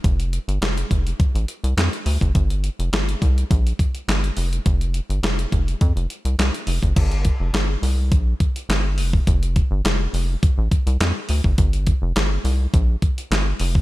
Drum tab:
CC |----------------|----------------|----------------|x---------------|
HH |xxxxxxxxxxxxxxox|xxxxxxxxxxxxxxox|xxxxxxxxxxxxxxox|xxx-x-o-x-xxx-o-|
CP |----x-------x---|----x-------x---|----x-------x---|----x-------x---|
SD |----o-------o---|----o-------o---|----o-------o---|----o-------o---|
BD |o-----o-o------o|o-----o-o-o-----|o-----o-o------o|o-o-----o-o----o|

CC |----------------|----------------|
HH |xxx-x-o-x-xxx-o-|xxx-x-o-x-xxx-o-|
CP |----x-------x---|----x-------x---|
SD |----o-------o---|----o-------o---|
BD |o-o-----o-o----o|o-o-----o-o----o|